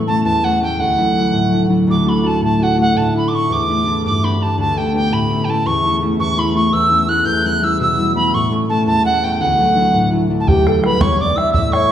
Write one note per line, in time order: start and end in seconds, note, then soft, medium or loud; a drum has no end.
0.00 0.30 A2 medium
0.00 0.98 E4 medium
0.07 0.43 A3 soft
0.07 0.44 B3 soft
0.07 0.45 C#4 medium
0.07 0.24 A5 medium
0.24 0.84 E2 medium
0.24 0.46 A5 medium
0.44 0.60 A3 soft
0.44 0.61 B3 soft
0.44 0.61 C#4 soft
0.44 0.62 F#5 medium
0.60 2.05 A3 soft
0.60 3.72 B3 soft
0.60 0.85 C#4 soft
0.60 0.81 G5 medium
0.79 1.86 D2 soft
0.79 1.61 F#5 medium
0.98 1.14 F#3 soft
0.98 1.15 D4 soft
0.98 1.16 E4 medium
1.16 1.49 F#3 soft
1.16 1.52 D4 soft
1.16 1.55 E4 soft
1.33 1.93 A2 medium
1.50 1.68 F#3 soft
1.50 1.69 D4 soft
1.56 1.69 E4 soft
1.69 1.93 F#3 soft
1.69 2.06 D4 soft
1.69 3.15 E4 medium
1.87 3.01 D2 medium
1.87 2.10 D6 medium
2.06 2.23 A3 medium
2.06 2.23 D4 soft
2.06 2.24 F#4 soft
2.06 2.28 B5 medium
2.23 2.59 A3 soft
2.23 2.59 D4 soft
2.23 2.60 F#4 soft
2.23 2.43 A5 medium
2.41 2.94 A2 medium
2.41 2.64 A5 medium
2.59 2.76 A3 soft
2.59 2.77 D4 soft
2.59 2.77 F#4 soft
2.59 2.80 F#5 medium
2.77 3.13 A3 soft
2.77 3.14 D4 soft
2.77 4.11 F#4 soft
2.81 2.99 F#5 medium
2.95 3.55 A2 medium
2.95 3.16 A5 medium
3.14 3.31 A3 soft
3.14 3.32 D4 soft
3.14 3.32 E4 medium
3.14 3.30 B5 medium
3.28 3.68 A3 soft
3.28 3.69 D4 soft
3.28 3.69 E4 medium
3.28 3.36 D6 medium
3.35 3.54 C#6 medium
3.49 4.09 E2 medium
3.49 4.05 D6 medium
3.69 3.85 A3 soft
3.69 3.86 D4 soft
3.69 3.87 E4 soft
3.86 5.30 A3 medium
3.86 4.22 D4 soft
3.86 5.31 E4 medium
4.05 4.63 G2 medium
4.05 4.26 D6 medium
4.23 4.40 B3 medium
4.23 4.40 D4 soft
4.23 4.41 G4 medium
4.23 4.44 B5 medium
4.40 4.76 B3 soft
4.40 4.77 D4 soft
4.40 4.77 G4 soft
4.40 4.59 A5 medium
4.58 5.17 D2 medium
4.58 4.79 A5 loud
4.76 4.93 B3 soft
4.76 4.94 D4 soft
4.76 4.95 G4 soft
4.76 4.95 G5 medium
4.94 7.45 B3 soft
4.94 5.37 D4 soft
4.94 7.30 G4 soft
4.94 5.15 G5 medium
5.12 5.71 A2 medium
5.12 5.46 B5 medium
5.31 5.47 A3 soft
5.31 5.48 C#4 soft
5.31 5.48 E4 soft
5.45 5.84 A3 soft
5.45 5.84 C#4 soft
5.45 5.51 G5 medium
5.49 5.85 E4 soft
5.49 5.68 A5 medium
5.66 6.18 E2 medium
5.66 5.96 C#6 medium
5.84 6.01 A3 soft
5.84 6.02 C#4 soft
5.84 6.02 E4 soft
6.02 6.37 A3 soft
6.02 6.37 C#4 soft
6.02 6.38 E4 medium
6.19 6.71 E2 medium
6.19 6.40 C#6 medium
6.37 6.54 A3 soft
6.37 6.55 C#4 soft
6.37 6.57 E4 soft
6.37 6.55 B5 medium
6.54 6.91 A3 soft
6.54 6.91 C#4 soft
6.54 6.92 E4 soft
6.54 6.74 C#6 medium
6.73 7.25 E2 medium
6.73 7.10 E6 medium
6.91 7.08 A3 soft
6.91 7.08 C#4 soft
6.91 7.09 E4 soft
7.08 8.51 A3 soft
7.08 8.52 C#4 soft
7.08 7.46 E4 soft
7.08 7.27 F#6 medium
7.25 8.39 E2 medium
7.25 7.48 G6 medium
7.45 7.61 G3 soft
7.45 7.62 B3 soft
7.45 7.64 E4 soft
7.45 7.65 F#6 medium
7.61 7.98 G3 soft
7.61 7.99 B3 soft
7.61 7.99 E4 medium
7.61 7.80 E6 medium
7.79 8.39 B2 medium
7.79 8.15 E6 loud
7.99 8.14 G3 soft
7.99 8.15 B3 soft
7.99 8.16 E4 soft
8.15 8.39 G3 soft
8.15 8.51 B3 soft
8.15 9.60 E4 soft
8.15 8.36 B5 medium
8.33 8.93 A2 medium
8.33 8.53 C#6 medium
8.51 8.68 A3 soft
8.51 8.69 B3 soft
8.51 8.69 C#4 soft
8.69 9.05 A3 medium
8.69 9.05 B3 soft
8.69 9.06 C#4 medium
8.69 8.86 A5 medium
8.86 9.46 E2 medium
8.86 9.05 A5 medium
9.05 9.22 A3 soft
9.05 9.23 B3 soft
9.05 9.23 C#4 soft
9.05 9.25 F#5 medium
9.22 11.89 A3 soft
9.22 10.83 B3 soft
9.22 9.46 C#4 soft
9.22 9.42 G5 medium
9.40 10.53 D2 medium
9.40 10.09 F#5 medium
9.59 9.74 F#3 soft
9.59 9.76 D4 soft
9.59 9.76 E4 soft
9.75 10.11 F#3 soft
9.75 10.12 D4 soft
9.75 10.12 E4 medium
9.94 10.53 A2 medium
10.12 10.28 F#3 soft
10.12 10.29 D4 soft
10.12 10.30 E4 soft
10.30 10.53 F#3 soft
10.30 11.92 D4 soft
10.30 10.83 E4 soft
10.40 10.49 A5 medium
10.47 11.59 E2 medium
10.47 10.69 G4 medium
10.47 10.84 G5 medium
10.47 bodhran medium
10.67 10.87 A4 medium
10.67 bodhran medium
10.83 11.00 G3 soft
10.83 11.01 B3 soft
10.83 11.02 E4 soft
10.83 11.05 B4 medium
10.83 11.03 B5 medium
10.83 bodhran medium
11.01 11.36 G3 soft
11.01 11.37 B3 soft
11.01 11.37 E4 medium
11.01 11.23 C#5 medium
11.01 11.19 C#6 medium
11.01 bodhran medium
11.20 11.39 D5 medium
11.20 11.38 D6 medium
11.20 bodhran soft
11.36 11.59 G3 soft
11.36 11.92 B3 soft
11.36 11.90 E4 medium
11.36 11.54 E5 medium
11.36 11.53 E6 loud
11.36 bodhran medium
11.53 11.92 A2 soft
11.53 11.75 E5 medium
11.53 11.74 E6 medium
11.53 bodhran medium
11.72 11.92 C#5 medium
11.72 11.92 C#6 medium
11.72 bodhran medium